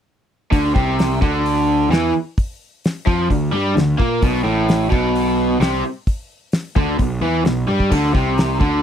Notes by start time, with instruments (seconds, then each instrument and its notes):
0.52 picked electric bass D2, overdriven electric guitar D3, kick, open hi-hat
0.75 picked electric bass C2, overdriven electric guitar C3, kick
0.99 snare, open hi-hat
1.22 picked electric bass D2, overdriven electric guitar D3, kick
1.46 open hi-hat
1.89 picked electric bass E2, overdriven electric guitar E3, open hi-hat
1.93 snare
2.38 kick, open hi-hat
2.84 snare, open hi-hat
3.06 picked electric bass F2, overdriven electric guitar F3, kick
3.30 picked electric bass D2, overdriven electric guitar D3, kick, open hi-hat
3.52 picked electric bass G2, overdriven electric guitar G3
3.75 picked electric bass D2, overdriven electric guitar D3, snare, open hi-hat
3.98 picked electric bass A#2, overdriven electric guitar A#3, kick
4.22 picked electric bass B1, overdriven electric guitar B2, kick, open hi-hat
4.44 picked electric bass A1, overdriven electric guitar A2
4.69 snare, open hi-hat
4.90 picked electric bass B1, overdriven electric guitar B2, kick
5.15 open hi-hat
5.60 picked electric bass C2, overdriven electric guitar C3, snare, open hi-hat
6.07 kick, open hi-hat
6.52 snare, open hi-hat
6.76 picked electric bass D2, overdriven electric guitar D3, kick
6.98 picked electric bass B1, overdriven electric guitar B2, kick, open hi-hat
7.21 picked electric bass E2, overdriven electric guitar E3
7.45 picked electric bass B1, overdriven electric guitar B2, snare, open hi-hat
7.67 picked electric bass G2, overdriven electric guitar G3, high tom
7.80 kick
7.91 picked electric bass D2, overdriven electric guitar D3, kick, open hi-hat, splash
8.14 picked electric bass C2, overdriven electric guitar C3, kick
8.38 snare, open hi-hat
8.60 picked electric bass D2, overdriven electric guitar D3, kick